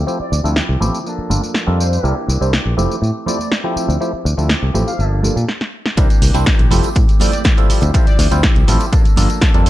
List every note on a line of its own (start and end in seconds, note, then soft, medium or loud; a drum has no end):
0.00 0.54 F3 medium
0.00 0.55 C4 medium
0.00 0.56 E4 medium
0.00 0.58 G4 medium
0.07 0.18 F3 medium
0.07 0.18 A3 medium
0.07 0.18 C4 medium
0.07 0.18 E4 medium
0.07 0.19 G4 loud
0.07 tambourine soft
0.20 0.38 D5 medium
0.20 muted fingered electric bass stroke soft
0.32 0.40 D2 loud
0.32 tambourine medium
0.44 0.59 D2 medium
0.44 0.55 F3 medium
0.44 0.55 A3 medium
0.44 0.55 C4 medium
0.44 0.55 E4 medium
0.44 0.55 A4 medium
0.44 tambourine soft
0.55 1.03 F3 medium
0.55 1.06 C4 medium
0.55 1.06 E4 medium
0.55 1.07 G4 medium
0.55 snare loud
0.55 tambourine soft
0.69 0.76 C2 medium
0.80 0.89 A1 loud
0.80 0.98 F3 medium
0.80 0.99 A3 medium
0.80 0.99 C4 medium
0.80 0.99 E4 medium
0.80 0.99 G4 loud
0.80 tambourine medium
0.80 high conga medium
0.80 low conga medium
0.94 tambourine medium
0.94 tambourine soft
1.04 2.03 F3 medium
1.04 2.03 A#3 medium
1.04 2.04 D4 loud
1.04 tambourine medium
1.04 tambourine soft
1.09 2.05 A4 loud
1.18 muted fingered electric bass stroke soft
1.30 1.38 G1 medium
1.30 1.41 G3 medium
1.30 1.41 A#3 medium
1.30 1.41 D4 medium
1.30 1.41 F4 medium
1.30 1.42 A4 medium
1.30 tambourine medium
1.30 high conga medium
1.30 low conga medium
1.42 tambourine medium
1.42 tambourine soft
1.42 high conga medium
1.54 snare loud
1.54 tambourine soft
1.67 1.97 F2 medium
1.67 2.01 G3 medium
1.67 2.01 A#3 medium
1.67 2.01 D4 medium
1.67 2.01 F4 medium
1.67 2.01 A4 loud
1.79 2.09 C5 medium
1.79 tambourine medium
1.93 tambourine soft
2.03 2.12 C2 medium
2.03 2.52 E3 medium
2.03 2.15 G3 medium
2.03 2.52 A#3 medium
2.03 2.15 C4 medium
2.03 2.15 D4 medium
2.03 2.53 D4 loud
2.03 2.15 E4 medium
2.03 2.55 G4 loud
2.03 2.15 A#4 loud
2.03 tambourine soft
2.28 2.36 C2 loud
2.28 tambourine medium
2.41 2.56 C2 medium
2.41 2.52 G3 medium
2.41 2.52 C4 medium
2.41 2.52 D4 medium
2.41 2.52 E4 medium
2.41 2.52 C5 medium
2.41 tambourine soft
2.52 2.77 E3 medium
2.52 2.78 A#3 medium
2.52 2.77 D4 medium
2.52 2.76 G4 medium
2.52 snare loud
2.52 tambourine soft
2.65 2.73 A#1 medium
2.77 2.85 F1 loud
2.77 3.28 E3 medium
2.77 2.95 F3 medium
2.77 2.95 A3 medium
2.77 3.29 A3 medium
2.77 2.95 C4 medium
2.77 3.26 C4 medium
2.77 2.96 E4 medium
2.77 3.26 G4 medium
2.77 2.96 G4 loud
2.77 tambourine medium
2.77 high conga medium
2.77 low conga medium
2.91 tambourine soft
3.02 3.10 A2 medium
3.02 tambourine soft
3.15 tambourine soft
3.26 3.38 F3 medium
3.26 3.38 A3 medium
3.26 3.77 A3 soft
3.26 3.38 C4 medium
3.26 3.76 C4 medium
3.26 3.38 E4 medium
3.26 3.75 G4 medium
3.26 3.38 G4 medium
3.26 3.45 D5 medium
3.26 tambourine medium
3.26 high conga medium
3.26 low conga medium
3.39 tambourine medium
3.39 tambourine soft
3.39 high conga medium
3.52 snare loud
3.52 tambourine soft
3.64 3.98 F3 medium
3.64 3.98 A3 medium
3.64 3.98 C4 medium
3.64 3.98 E4 medium
3.64 3.98 G4 loud
3.64 tambourine soft
3.76 4.48 F3 medium
3.76 4.49 C4 medium
3.76 4.50 E4 medium
3.76 4.52 G4 medium
3.76 muted fingered electric bass stroke soft
3.76 tambourine medium
3.88 3.96 D2 medium
3.88 tambourine soft
4.00 4.12 F3 medium
4.00 4.12 A3 medium
4.00 4.12 C4 medium
4.00 4.12 E4 medium
4.00 4.12 G4 loud
4.00 tambourine soft
4.13 muted fingered electric bass stroke soft
4.25 4.33 D2 loud
4.25 tambourine medium
4.37 4.53 D2 medium
4.37 4.48 F3 medium
4.37 4.49 A3 medium
4.37 4.49 C4 medium
4.37 4.49 E4 medium
4.37 4.49 A4 medium
4.37 tambourine soft
4.49 4.97 F3 medium
4.49 4.99 C4 medium
4.49 5.00 E4 medium
4.49 5.00 G4 medium
4.49 snare loud
4.49 tambourine soft
4.62 4.70 C2 medium
4.74 4.82 A1 medium
4.74 4.92 F3 medium
4.74 4.92 A3 medium
4.74 4.92 C4 medium
4.74 4.92 E4 medium
4.74 4.92 G4 loud
4.74 tambourine medium
4.74 high conga medium
4.74 low conga medium
4.87 5.04 F5 medium
4.87 tambourine medium
4.87 tambourine soft
4.98 5.28 G1 loud
4.98 5.23 F3 medium
4.98 5.24 A#3 medium
4.98 5.23 D4 medium
4.98 5.21 A4 loud
4.98 tambourine soft
5.12 tambourine soft
5.23 5.35 G3 medium
5.23 5.35 A#3 medium
5.23 5.49 A#3 medium
5.23 5.35 D4 medium
5.23 5.49 D4 medium
5.23 5.35 F4 medium
5.23 5.48 A4 medium
5.23 5.35 A4 medium
5.23 tambourine medium
5.23 high conga medium
5.23 low conga medium
5.36 5.44 A#2 loud
5.36 tambourine medium
5.36 tambourine soft
5.36 high conga medium
5.48 snare medium
5.61 snare medium
5.86 snare medium
5.97 6.05 C2 loud
5.97 6.46 E3 medium
5.97 6.09 G3 loud
5.97 6.46 A#3 medium
5.97 6.09 C4 medium
5.97 6.09 D4 medium
5.97 6.46 D4 loud
5.97 6.09 E4 medium
5.97 6.48 G4 loud
5.97 6.09 A#4 loud
5.97 kick loud
5.97 closed hi-hat loud
5.97 tambourine medium
5.97 tambourine soft
6.10 closed hi-hat soft
6.10 tambourine soft
6.22 6.30 C2 loud
6.22 open hi-hat loud
6.22 tambourine medium
6.34 6.50 C2 medium
6.34 6.45 G3 medium
6.34 6.45 C4 medium
6.34 6.45 D4 medium
6.34 6.45 E4 medium
6.34 6.46 C5 medium
6.34 closed hi-hat soft
6.34 tambourine medium
6.34 tambourine soft
6.46 6.69 E3 medium
6.46 6.71 A#3 medium
6.46 6.72 D4 loud
6.46 6.72 G4 loud
6.46 kick loud
6.46 snare loud
6.46 closed hi-hat medium
6.46 tambourine soft
6.59 6.67 A#1 medium
6.59 closed hi-hat soft
6.59 tambourine soft
6.70 6.79 F1 loud
6.70 6.83 E3 medium
6.70 6.89 G3 loud
6.70 6.84 A3 medium
6.70 6.89 C4 medium
6.70 6.83 C4 medium
6.70 6.89 E4 medium
6.70 6.89 F4 medium
6.70 6.82 G4 medium
6.70 6.89 A4 loud
6.70 open hi-hat loud
6.70 tambourine medium
6.70 high conga medium
6.70 low conga medium
6.83 7.08 C4 medium
6.83 7.06 G4 medium
6.83 closed hi-hat soft
6.83 tambourine medium
6.85 7.09 A3 medium
6.85 tambourine soft
6.95 7.04 A2 medium
6.95 kick loud
6.95 closed hi-hat loud
6.95 tambourine medium
6.97 tambourine soft
7.07 7.21 C4 medium
7.07 7.20 G4 medium
7.07 closed hi-hat soft
7.07 tambourine soft
7.10 7.20 A3 medium
7.10 tambourine soft
7.20 7.43 E3 medium
7.20 7.31 G3 medium
7.20 7.44 A3 medium
7.20 7.32 C4 medium
7.20 7.45 C4 medium
7.20 7.32 E4 medium
7.20 7.32 F4 medium
7.20 7.45 G4 medium
7.20 7.32 A4 medium
7.20 7.39 D5 medium
7.20 open hi-hat loud
7.20 tambourine medium
7.20 high conga medium
7.20 low conga loud
7.32 closed hi-hat soft
7.32 tambourine medium
7.32 high conga medium
7.34 tambourine soft
7.44 7.68 E3 medium
7.44 7.69 A3 loud
7.44 7.69 C4 loud
7.44 kick loud
7.44 snare loud
7.44 closed hi-hat loud
7.44 tambourine medium
7.46 7.70 G4 loud
7.46 tambourine soft
7.57 7.91 G3 loud
7.57 7.91 C4 medium
7.57 7.91 E4 medium
7.57 7.91 F4 medium
7.57 7.92 A4 loud
7.57 closed hi-hat soft
7.57 tambourine soft
7.69 7.82 F3 medium
7.69 7.82 C4 medium
7.69 7.82 E4 medium
7.69 7.80 G4 medium
7.69 muted fingered electric bass stroke soft
7.69 open hi-hat loud
7.69 tambourine medium
7.81 7.90 D2 loud
7.81 7.94 E4 medium
7.81 7.94 G4 medium
7.81 closed hi-hat soft
7.81 tambourine medium
7.83 7.93 C4 medium
7.83 tambourine soft
7.94 8.42 F3 medium
7.94 8.05 G3 loud
7.94 8.05 C4 medium
7.94 8.42 C4 loud
7.94 8.06 E4 medium
7.94 8.43 E4 loud
7.94 8.06 F4 medium
7.94 8.45 G4 loud
7.94 8.06 A4 loud
7.94 kick loud
7.94 closed hi-hat medium
7.94 tambourine medium
7.94 tambourine soft
8.06 8.25 D5 medium
8.06 muted fingered electric bass stroke soft
8.06 closed hi-hat soft
8.06 tambourine soft
8.08 tambourine soft
8.19 8.27 D2 loud
8.19 open hi-hat loud
8.19 tambourine medium
8.31 8.46 D2 medium
8.31 8.42 G3 medium
8.31 8.42 C4 medium
8.31 8.42 E4 medium
8.31 8.42 F4 medium
8.31 8.42 C5 loud
8.31 closed hi-hat soft
8.31 tambourine medium
8.31 tambourine soft
8.43 8.66 F3 medium
8.43 8.67 C4 medium
8.43 8.68 E4 loud
8.43 8.69 G4 loud
8.43 kick loud
8.43 snare loud
8.43 closed hi-hat medium
8.43 tambourine soft
8.55 8.63 C2 medium
8.55 closed hi-hat soft
8.55 tambourine soft
8.67 8.76 A1 loud
8.67 8.80 F3 medium
8.67 8.85 G3 loud
8.67 8.86 C4 medium
8.67 8.81 C4 medium
8.67 8.86 E4 medium
8.67 8.80 E4 medium
8.67 8.86 F4 medium
8.67 8.78 G4 medium
8.67 8.86 A4 loud
8.67 open hi-hat loud
8.67 tambourine medium
8.67 high conga medium
8.67 low conga medium
8.79 8.92 C4 medium
8.79 8.93 E4 medium
8.79 8.92 G4 medium
8.79 closed hi-hat soft
8.79 tambourine medium
8.79 tambourine soft
8.92 9.05 F3 medium
8.92 9.05 A#3 loud
8.92 9.05 D4 loud
8.92 9.03 A4 loud
8.92 kick loud
8.92 closed hi-hat medium
8.92 tambourine medium
8.92 tambourine soft
9.04 9.17 D4 medium
9.04 9.17 A4 medium
9.04 muted fingered electric bass stroke soft
9.04 closed hi-hat soft
9.04 tambourine soft
9.06 9.16 A#3 medium
9.06 tambourine soft
9.16 9.25 G1 medium
9.16 9.40 F3 medium
9.16 9.28 G3 medium
9.16 9.28 A#3 medium
9.16 9.41 A#3 medium
9.16 9.28 D4 medium
9.16 9.41 D4 medium
9.16 9.29 F4 medium
9.16 9.29 A4 loud
9.16 9.42 A4 medium
9.16 open hi-hat loud
9.16 tambourine medium
9.16 high conga medium
9.16 low conga medium
9.29 closed hi-hat soft
9.29 tambourine medium
9.29 tambourine soft
9.29 high conga medium
9.41 9.64 F3 medium
9.41 9.66 A#3 loud
9.41 9.66 D4 loud
9.41 9.67 A4 loud
9.41 kick loud
9.41 snare loud
9.41 closed hi-hat loud
9.41 tambourine medium
9.41 tambourine soft
9.54 9.70 F2 medium
9.54 9.70 G3 loud
9.54 9.70 A#3 medium
9.54 9.70 D4 medium
9.54 9.70 F4 medium
9.54 9.70 A4 loud
9.54 closed hi-hat soft
9.54 tambourine soft
9.65 9.70 F3 medium
9.65 9.70 C5 loud
9.65 open hi-hat loud